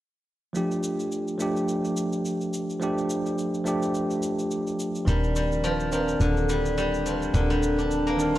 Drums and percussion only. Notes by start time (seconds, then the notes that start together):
0.55 cabasa
0.71 cabasa
0.83 cabasa
1.00 cabasa
1.12 cabasa
1.28 cabasa
1.40 cabasa
1.57 cabasa
1.69 cabasa
1.85 cabasa
1.97 cabasa
2.13 cabasa
2.25 cabasa
2.41 cabasa
2.54 cabasa
2.70 cabasa
2.82 cabasa
2.98 cabasa
3.10 cabasa
3.26 cabasa
3.38 cabasa
3.54 cabasa
3.66 cabasa
3.83 cabasa
3.95 cabasa
4.11 cabasa
4.23 cabasa
4.39 cabasa
4.51 cabasa
4.67 cabasa
4.80 cabasa
4.95 cabasa
5.08 cabasa
5.24 cabasa
5.36 cabasa
5.52 cabasa
5.64 cabasa
5.80 cabasa
5.93 cabasa
6.09 cabasa
6.21 cabasa
6.37 cabasa
6.49 cabasa
6.66 cabasa
6.78 cabasa
6.94 cabasa
7.06 cabasa
7.22 cabasa
7.34 cabasa
7.50 cabasa
7.63 cabasa
7.79 cabasa
7.91 cabasa
8.07 cabasa
8.19 cabasa
8.35 cabasa